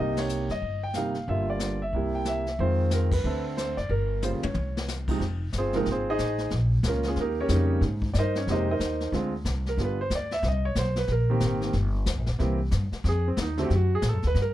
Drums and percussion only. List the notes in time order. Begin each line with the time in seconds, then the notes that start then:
0.17 snare, ride
0.29 hi-hat pedal
0.49 snare
0.62 brush sweep
0.94 snare, hi-hat pedal
1.14 snare
1.27 brush sweep
1.59 snare, hi-hat pedal
1.93 brush sweep
2.25 snare, hi-hat pedal
2.46 snare
2.58 brush sweep
2.91 snare, hi-hat pedal
3.12 kick, ride
3.25 brush sweep
3.58 snare, hi-hat pedal
3.77 snare
3.90 brush sweep
4.22 hi-hat pedal, high tom
4.43 high tom
4.54 mid tom
4.77 snare
4.88 snare, hi-hat pedal
5.08 kick, crash
5.21 brush sweep, snare
5.53 snare, hi-hat pedal
5.73 snare
5.85 brush sweep, snare
6.18 snare, hi-hat pedal
6.38 snare
6.50 brush sweep, snare
6.83 snare, hi-hat pedal
6.94 snare
7.03 snare
7.16 brush sweep, snare
7.49 snare, hi-hat pedal
7.82 brush sweep, snare
8.02 kick
8.14 snare, hi-hat pedal
8.35 snare
8.47 brush sweep, snare
8.80 snare, hi-hat pedal
9.00 snare
9.13 brush sweep, snare
9.45 snare, hi-hat pedal
9.66 snare
9.78 brush sweep, snare
10.10 snare, hi-hat pedal
10.31 snare
10.43 brush sweep, snare
10.75 snare, hi-hat pedal
10.96 snare
11.07 brush sweep, snare
11.40 snare, hi-hat pedal
11.61 snare
11.73 brush sweep, snare
12.06 snare, hi-hat pedal
12.26 snare
12.40 brush sweep, snare
12.71 snare, hi-hat pedal
12.92 snare
13.04 brush sweep, snare
13.37 snare, hi-hat pedal
13.58 snare
13.70 brush sweep, snare
14.02 snare, hi-hat pedal
14.22 snare
14.35 brush sweep, snare